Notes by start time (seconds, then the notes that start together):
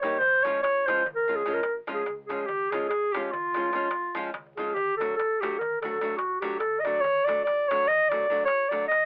0.01 G3 A#3 D#4 G4 C#5, darbuka tek
0.12 darbuka tek
0.19 C#2 C5, darbuka dum
0.43 F3 G#3 C#4 F4 C#5, darbuka tek
0.63 G#1 C#5, darbuka tek
0.87 F3 G#3 C#4 F4 C5, darbuka tek
1.06 C#2, darbuka dum
1.15 A#4
1.27 F3 G#3 C#4 F4
1.35 G#4
1.46 F3 G#3 C#4 F4, darbuka tek
1.53 A#4, darbuka tek
1.63 G#1, darbuka tek
1.87 F3 G#3 C#4 F4, darbuka tek
1.94 G#4
2.06 C#2, darbuka tek
2.26 F3 G#3 G#4, darbuka tek
2.30 C#4 F4
2.39 darbuka tek
2.46 C#2 G4, darbuka dum
2.60 darbuka tek
2.70 F3 G#3 C#4 G#4, darbuka tek
2.74 F4
2.82 darbuka tek
2.88 G#1 G#4, darbuka tek
3.03 darbuka tek
3.12 F3 G#3 G4, darbuka tek
3.16 C#4 F4
3.23 G4, darbuka tek
3.31 C#2 F4, darbuka dum
3.44 darbuka tek
3.54 F3 G#3 C#4 F4, darbuka tek
3.73 F3 G#3 C#4 F4, darbuka tek
3.91 G#1, darbuka tek
4.15 F3 G#3 C#4 F4, darbuka tek
4.24 darbuka tek
4.34 C#2, darbuka tek, darbuka dum
4.46 darbuka tek
4.56 F3 G#3 C#4 F4 G#4, darbuka tek
4.73 D2 G4, darbuka dum
4.97 F#3 A4
5.01 A3 D4 F#4, darbuka tek
5.16 A1 A4, darbuka tek
5.40 F#3 A3 D4 F#4 G4, darbuka tek
5.58 D2 A#4, darbuka dum
5.81 F#3 A3 D4 A4, darbuka tek
5.85 F#4
6.01 F#3 A3 D4 F#4, darbuka tek
6.10 darbuka tek
6.17 A1 F#4, darbuka tek
6.40 F#3 A3 D4 G4, darbuka tek
6.44 F#4
6.52 darbuka tek
6.59 D2 A4, darbuka tek
6.80 D5 D#5
6.85 F#3 A3 D4 F#4, darbuka tek
7.01 C#5, darbuka dum
7.05 D2
7.25 F#3 A3 D5, darbuka tek
7.29 D4 F#4
7.44 D5, darbuka tek
7.48 A1
7.68 F#3 A3 D4 C#5, darbuka tek
7.73 F#4
7.88 D2 D#5, darbuka dum
8.09 F#3 A3 D4 D5, darbuka tek
8.13 F#4
8.30 F#3 A3 D4 F#4
8.39 darbuka tek
8.45 A1 C#5, darbuka tek
8.69 F#3 A3 D4 F#4 D5, darbuka tek
8.81 darbuka tek
8.87 D2 D#5, darbuka tek